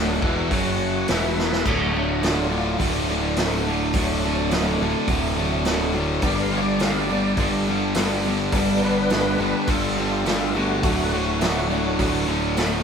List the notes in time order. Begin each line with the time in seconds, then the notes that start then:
Already playing: D1 D2 A2 D3 D4 F#4 A4 F#5
0.22 E1 E2 B2 E3, kick
0.51 F#1 F#2 C#3 F#3 F#4 C#5 F#5, kick, open hi-hat
1.08 E1 E2 B2 E3 E4 B4 E5, snare, open hi-hat
1.39 snare
1.52 snare
1.65 D1 D2 A2 D3 F#3 A3 D4 F#4, kick, crash
1.94 D2 A2 D3 A3 D4 F#4
2.22 D2 A2 D3 F#3 A3 D4 F4 F#4, snare, open hi-hat
2.50 D2 A2 D3 A3 D4 F#4
2.78 D1 D2 A2 D3 F#3 A3 D4 F#4, kick, open hi-hat
2.82 D4
3.08 D2 A2 D3 A3 D4 F#4
3.36 D2 A2 D3 F#3 A3 C4 D4 F#4, snare, open hi-hat
3.66 D2 A2 D3 A3 D4 F#4
3.93 D1 D2 A2 D3 F#3 A3 D4 F#4, kick, open hi-hat
4.21 D2 A2 A3 D4 F#4
4.25 C3 D3 A3
4.50 D2 A2 D3 F#3 A3 D4 F#4, snare, open hi-hat
4.80 D1 D2 A2 D3 A3 D4 F#4
5.07 D1 D2 A2 D3 F#3 A3 D4 F#4, kick, open hi-hat
5.36 D2 A2 D3 A3 D4 F#4
5.65 D2 A2 D3 F#3 A3 D4 F#4, snare, open hi-hat
5.94 D2 A2 D3 A3 D4 F#4
6.19 G1 G2 D3 G3 B3 D4 C#5, kick, open hi-hat
6.23 G2 D3 G3 D4 G4 D5
6.42 F5
6.50 G2 D3 G3 B3 D4 G4
6.57 C#5
6.62 D5
6.79 G2 D3 G3 B3 D4 G4 F5, snare, open hi-hat
7.00 D5
7.09 G2 D3 G3 B3 D4 G4
7.37 G1 G2 D3 G3 B3 D4 G4, kick, open hi-hat
7.67 G2 D3 G3 B3 D4 G4
7.94 G2 D3 G3 B3 D4 G4, snare, open hi-hat
8.25 G2 D3 G3 B3 D4 G4
8.52 G1 G2 D3 G3 B3 D4, kick, open hi-hat
8.56 G4
8.80 G2 D3 G3 D4 G4 A#4
8.84 G3 B3 B4
9.09 G2 D3 G3 B3 D4 G4, snare, open hi-hat
9.14 B4
9.38 G1 G2 D3 G3 B3 D4 G4
9.43 B4
9.67 G1 G2 D3 G3 B3 D4 F4 G4 A4, kick, open hi-hat
9.96 G2 D3 G3 B3 D4 F4 G4 A4
10.25 G2 D3 G3 B3 D4 F4 G4 A4, snare, open hi-hat
10.54 G2 D3 G3 A3 B3 D4 F#4 G4
10.83 D1 D2 A2 D3 F#3 A3 D4 F#4, kick, open hi-hat
11.12 D2 A2 D3 A3 D4 F#4
11.41 D2 A2 D3 F#3 A3 D4 F#4, snare, open hi-hat
11.70 D2 A2 D3 F#3 A3 D4 F#4
11.99 D1 D2 A2 D3 F#3 A3 D4 F#4, kick, open hi-hat
12.27 D2 A2 D3 A3 D4 F#4
12.57 D2 A2 D3 F#3 A3 D4 F#4, snare, open hi-hat